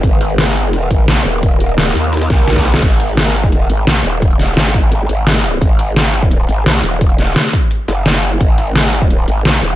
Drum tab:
CC |--------------------------------|--------------------------------|x-------------------------------|--------------------------------|
HH |x---x-x-x---x---x-x-x---x---x---|x-x-x-x-x---x-x-xxx-x---x---x-x-|x---x-x-x---x---x---x---x---x---|x-x-x-x-x---x-x-x---x---x---x---|
SD |----o---o-------o-------o-o-----|--------o-------ooo-o---o-o-o-o-|----o---o-----o---------o-o-----|----o---o---------------o-------|
BD |o-------------------o-----------|o-------------------o-----o-----|o-------------o-----------------|o-----------o-------------------|

CC |--------------------------------|--------------------------------|--------------------------------|
HH |x---x-x-x---x---x---x---x---x---|x-x-x-x-x---x-x-x---x---x-x-x-x-|x---x-x-x---x---x---x---x---x---|
SD |----o---o-----o---------o-o-----|----o---o-----------o---o-o-----|----o---o-----o---------o-o-----|
BD |o-------------o-----------------|o-----------o-------------------|o-------------o-----------------|